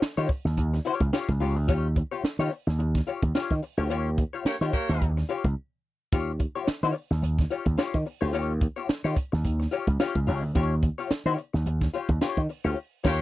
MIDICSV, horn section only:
0, 0, Header, 1, 2, 480
1, 0, Start_track
1, 0, Tempo, 554529
1, 1459, Time_signature, 4, 2, 24, 8
1, 11440, End_track
2, 0, Start_track
2, 0, Title_t, "Horn section"
2, 0, Program_c, 0, 61
2, 3854, Note_on_c, 0, 73, 94
2, 3855, Note_on_c, 0, 58, 89
2, 3857, Note_on_c, 0, 67, 85
2, 3942, Note_off_c, 0, 58, 0
2, 3942, Note_off_c, 0, 73, 0
2, 3943, Note_off_c, 0, 67, 0
2, 4095, Note_on_c, 0, 58, 100
2, 4095, Note_on_c, 0, 67, 110
2, 4095, Note_on_c, 0, 73, 102
2, 4415, Note_off_c, 0, 58, 0
2, 4415, Note_off_c, 0, 67, 0
2, 4415, Note_off_c, 0, 73, 0
2, 11290, Note_on_c, 0, 58, 89
2, 11290, Note_on_c, 0, 67, 97
2, 11291, Note_on_c, 0, 73, 98
2, 11417, Note_off_c, 0, 58, 0
2, 11418, Note_off_c, 0, 67, 0
2, 11418, Note_off_c, 0, 73, 0
2, 11440, End_track
0, 0, End_of_file